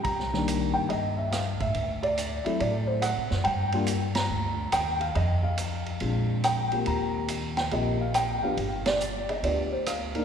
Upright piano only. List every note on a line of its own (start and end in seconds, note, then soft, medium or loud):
0.00 0.13 G4 soft
0.00 0.44 A#5 medium
0.33 0.87 D#3 medium
0.33 0.87 G3 medium
0.33 0.87 A#3 medium
0.33 0.88 D4 medium
0.74 0.88 G5 medium
0.89 1.16 D#5 medium
1.17 1.31 E5 medium
1.31 1.61 F5 medium
1.60 2.00 E5 medium
2.03 2.47 D5 medium
2.45 2.59 F#3 medium
2.45 2.59 A3 soft
2.45 2.59 C4 medium
2.45 2.59 E4 medium
2.45 2.58 E5 medium
2.60 2.89 D5 medium
2.87 3.01 C5 medium
3.02 3.46 F#5 loud
3.44 3.84 G5 medium
3.73 3.86 G3 medium
3.73 3.86 A#3 medium
3.73 3.86 D4 medium
3.73 3.87 F4 medium
4.15 4.69 A#5 medium
4.72 5.02 G5 medium
5.00 5.16 F5 medium
5.15 5.45 D#5 medium
5.43 6.40 F5 medium
6.01 6.66 G#3 medium
6.01 6.66 C4 soft
6.01 6.67 D4 soft
6.01 6.67 F4 soft
6.44 6.84 G5 medium
6.72 7.26 A#3 medium
6.72 7.27 C4 soft
6.72 7.27 F4 soft
6.72 7.27 G4 medium
6.87 7.27 A#5 medium
7.57 7.71 G5 medium
7.72 7.98 A#3 medium
7.72 7.98 C4 soft
7.72 7.98 F4 medium
7.72 7.98 G4 medium
7.72 7.99 D#5 medium
8.01 8.15 F5 medium
8.15 8.41 G5 medium
8.43 8.57 B3 medium
8.43 8.57 D4 medium
8.43 8.57 F4 medium
8.43 8.57 G4 medium
8.43 8.87 F5 medium
8.86 9.30 D5 medium
9.29 9.44 D#5 medium
9.44 9.69 B3 medium
9.44 9.69 D4 soft
9.44 9.69 F4 soft
9.44 9.69 G4 medium
9.44 9.73 D5 medium
9.73 9.85 C5 medium
9.87 10.25 F5 medium
10.15 10.25 A#3 medium
10.15 10.25 D4 medium
10.15 10.25 D#4 medium
10.15 10.25 A#4 medium